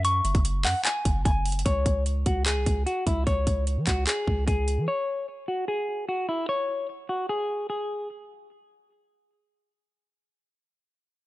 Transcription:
<<
  \new Staff \with { instrumentName = "Clean electric guitar" } { \time 4/4 \key cis \minor \tempo 4 = 149 cis'''4 r8 fis''8 gis''4 gis''4 | cis''4 r8 fis'8 gis'4 fis'8 e'8 | cis''4 r8 fis'8 gis'4 gis'4 | cis''4 r8 fis'8 gis'4 fis'8 e'8 |
cis''4 r8 fis'8 gis'4 gis'4 | r1 | r1 | }
  \new Staff \with { instrumentName = "808-style bass" } { \clef bass \time 4/4 \key cis \minor fis,8 fis,,16 fis,,8. fis,16 r8. fis,,8 fis,,4 | cis,8 cis,4 cis,8. bis,,16 cis,8 r8 cis,8 | cis,8 cis,8. e16 cis,8 r8 cis,8 cis,8. e16 | r1 |
r1 | r1 | r1 | }
  \new DrumStaff \with { instrumentName = "Drums" } \drummode { \time 4/4 hh8 hh16 <hh bd>16 hh8 <hc hho>8 <hc hh>8 <hh bd>8 \tuplet 3/2 { <hh bd>16 r16 r16 <hh hho>16 hh16 hh16 } | <hh bd>8 <hh bd>8 hh8 <hh bd>8 <hc hh>8 <hh bd>8 hh8 <hh bd>8 | <hh bd>8 <hh bd>8 hh8 <hc hh bd>8 <hc hh>8 bd8 <hh bd>8 hh8 | r4 r4 r4 r4 |
r4 r4 r4 r4 | r4 r4 r4 r4 | r4 r4 r4 r4 | }
>>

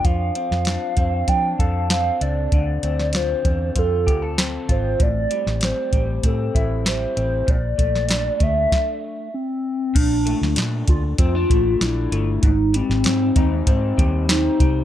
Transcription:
<<
  \new Staff \with { instrumentName = "Soft synth lead" } { \time 4/4 \key bes \lydian \tempo 4 = 97 f''8 f''4. g''8 f''8 f''8 d''8 | d''4 c''4 a'4 r8 c''8 | d''4 c''4 a'4 c''4 | d''4. e''4. c'4 |
d'4 r8 f'8 f'4 e'4 | ees'8 c'2 r8 ees'4 | }
  \new Staff \with { instrumentName = "Clean electric guitar" } { \time 4/4 \key bes \lydian f8 c'8 d'8 c'8 d'8 a'8 c'8 d'8 | d8 c'8 f'8 c'8 f'8 g'16 a'16 c'8 f'8 | a,8 g8 c'8 g8 c'8 e'8 g8 c'8 | bes,8 a8 d'8 a8 r2 |
bes,8 a8 d'4 c'16 d'16 a8 d'8 a8 | aes,8 g8 c'8 ees'8 c'8 g8 c'8 g8 | }
  \new Staff \with { instrumentName = "Fingered electric bass" } { \clef bass \time 4/4 \key bes \lydian f,8 r16 f,8 r16 f,8 f8 f,4 des,8 | d,8 d,4 e,8 f,8 d,4 aes,,8 | a,,8 r16 a,,8 r16 a,,8 a,8 a,,4 a,,8 | bes,,8 bes,,4 d,8 r2 |
bes,,8. d,16 bes,8 d,8 f,8 a,,8 bes,,8 g,,8 | aes,,8. aes,,16 aes,8 ees,8 aes,8 ees,4 c,8 | }
  \new DrumStaff \with { instrumentName = "Drums" } \drummode { \time 4/4 <hh bd>8 hh16 sn16 <hh sn>8 <hh bd>8 <hh bd>8 <hh bd>8 <hh sn>8 hh8 | <hh bd>8 hh16 sn16 <hh sn>8 <hh bd>8 <hh bd>8 <hh bd>8 <hh sn>8 <hh bd>8 | <hh bd>8 hh16 sn16 <hh sn>8 <hh bd>8 <hh bd>8 <hh bd>8 <hh sn>8 hh8 | <hh bd>8 <hh bd>16 sn16 <hh sn>8 <hh bd>8 <bd sn>4 r4 |
<cymc hh bd>8 hh16 sn16 <hh sn>8 <hh bd>8 <hh bd>8 <hh bd>8 <hh sn>8 hh8 | <hh bd>8 hh16 sn16 <hh sn>8 <hh bd>8 <hh bd>8 <hh bd>8 <hh sn>8 <hh bd>8 | }
>>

